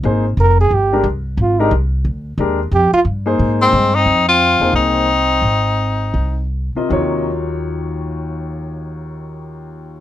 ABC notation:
X:1
M:4/4
L:1/8
Q:"Swing" 1/4=177
K:Fphr
V:1 name="Grand piano"
[B,EAc] z4 [A,=D=GB] z2 | z [A,=D=GB] z4 [A,DGB] z | z3 [B,EAc]3 z2 | z3 [B,EAc]3 z2 |
z6 z [C,FBe] | [E,,E,G,Fd]8- | [E,,E,G,Fd]8 |]
V:2 name="Trombone"
z2 B A =G2 z2 | F E z6 | =G F z3 A,2 C- | C C3 C4- |
C6 z2 | z8 | z8 |]
V:3 name="Tenor saxophone"
z8 | z8 | z4 z C2 E- | E F3 E4- |
E6 z2 | z8 | z8 |]
V:4 name="Upright bass" clef=bass
A,,,2 F,,,2 =G,,,2 C,,2 | A,,,2 C,,2 =D,,2 E,,2 | F,, z =G,,2 A,,2 G,,2 | F,,3 _F,, C,,4 |
A,,,4 C,,3 z | E,,8- | E,,8 |]